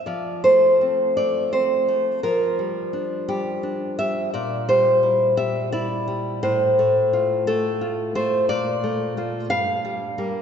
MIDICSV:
0, 0, Header, 1, 2, 480
1, 0, Start_track
1, 0, Key_signature, -1, "major"
1, 0, Tempo, 723764
1, 38, Time_signature, 6, 3, 24, 8
1, 1477, Tempo, 700117
1, 4357, Tempo, 681044
1, 7170, End_track
2, 0, Start_track
2, 0, Title_t, "Nylon-string guitar"
2, 0, Program_c, 0, 24
2, 40, Note_on_c, 0, 74, 53
2, 46, Note_on_c, 0, 53, 47
2, 274, Note_off_c, 0, 74, 0
2, 290, Note_on_c, 0, 72, 64
2, 297, Note_on_c, 0, 57, 38
2, 539, Note_on_c, 0, 60, 35
2, 746, Note_off_c, 0, 72, 0
2, 774, Note_off_c, 0, 57, 0
2, 774, Note_on_c, 0, 74, 67
2, 782, Note_on_c, 0, 57, 38
2, 998, Note_off_c, 0, 74, 0
2, 1007, Note_off_c, 0, 60, 0
2, 1012, Note_on_c, 0, 72, 66
2, 1015, Note_on_c, 0, 60, 37
2, 1242, Note_off_c, 0, 57, 0
2, 1250, Note_on_c, 0, 57, 39
2, 1455, Note_off_c, 0, 53, 0
2, 1464, Note_off_c, 0, 72, 0
2, 1481, Note_on_c, 0, 70, 64
2, 1482, Note_off_c, 0, 57, 0
2, 1485, Note_off_c, 0, 60, 0
2, 1486, Note_on_c, 0, 53, 48
2, 1725, Note_on_c, 0, 55, 37
2, 1960, Note_on_c, 0, 62, 37
2, 2171, Note_off_c, 0, 70, 0
2, 2194, Note_off_c, 0, 55, 0
2, 2201, Note_on_c, 0, 55, 43
2, 2202, Note_on_c, 0, 67, 70
2, 2432, Note_off_c, 0, 62, 0
2, 2440, Note_on_c, 0, 62, 42
2, 2664, Note_off_c, 0, 67, 0
2, 2681, Note_off_c, 0, 55, 0
2, 2683, Note_on_c, 0, 76, 77
2, 2689, Note_on_c, 0, 55, 43
2, 2897, Note_off_c, 0, 53, 0
2, 2911, Note_off_c, 0, 76, 0
2, 2920, Note_off_c, 0, 62, 0
2, 2922, Note_on_c, 0, 74, 65
2, 2923, Note_off_c, 0, 55, 0
2, 2926, Note_on_c, 0, 46, 51
2, 3149, Note_off_c, 0, 74, 0
2, 3163, Note_on_c, 0, 72, 80
2, 3167, Note_on_c, 0, 55, 45
2, 3398, Note_on_c, 0, 64, 39
2, 3623, Note_off_c, 0, 72, 0
2, 3633, Note_off_c, 0, 55, 0
2, 3634, Note_on_c, 0, 76, 86
2, 3642, Note_on_c, 0, 55, 47
2, 3867, Note_off_c, 0, 76, 0
2, 3871, Note_off_c, 0, 64, 0
2, 3875, Note_on_c, 0, 74, 83
2, 3879, Note_on_c, 0, 64, 47
2, 4108, Note_off_c, 0, 55, 0
2, 4116, Note_on_c, 0, 55, 49
2, 4335, Note_off_c, 0, 46, 0
2, 4338, Note_off_c, 0, 74, 0
2, 4357, Note_on_c, 0, 45, 59
2, 4357, Note_on_c, 0, 72, 86
2, 4358, Note_off_c, 0, 55, 0
2, 4360, Note_off_c, 0, 64, 0
2, 4612, Note_on_c, 0, 57, 46
2, 4854, Note_on_c, 0, 65, 46
2, 5059, Note_off_c, 0, 72, 0
2, 5089, Note_off_c, 0, 57, 0
2, 5093, Note_on_c, 0, 69, 82
2, 5097, Note_on_c, 0, 57, 47
2, 5325, Note_off_c, 0, 65, 0
2, 5333, Note_on_c, 0, 65, 50
2, 5552, Note_off_c, 0, 69, 0
2, 5566, Note_off_c, 0, 57, 0
2, 5573, Note_on_c, 0, 57, 49
2, 5573, Note_on_c, 0, 72, 82
2, 5780, Note_off_c, 0, 45, 0
2, 5800, Note_off_c, 0, 72, 0
2, 5810, Note_on_c, 0, 46, 59
2, 5810, Note_on_c, 0, 74, 89
2, 5811, Note_off_c, 0, 57, 0
2, 5811, Note_off_c, 0, 65, 0
2, 6054, Note_on_c, 0, 57, 49
2, 6282, Note_off_c, 0, 57, 0
2, 6291, Note_on_c, 0, 57, 42
2, 6295, Note_on_c, 0, 65, 48
2, 6495, Note_off_c, 0, 74, 0
2, 6502, Note_off_c, 0, 57, 0
2, 6503, Note_off_c, 0, 46, 0
2, 6504, Note_off_c, 0, 65, 0
2, 6522, Note_on_c, 0, 77, 96
2, 6527, Note_on_c, 0, 43, 58
2, 6767, Note_on_c, 0, 55, 48
2, 6992, Note_off_c, 0, 55, 0
2, 7002, Note_on_c, 0, 58, 48
2, 7003, Note_on_c, 0, 55, 44
2, 7161, Note_off_c, 0, 77, 0
2, 7170, Note_off_c, 0, 43, 0
2, 7170, Note_off_c, 0, 55, 0
2, 7170, Note_off_c, 0, 58, 0
2, 7170, End_track
0, 0, End_of_file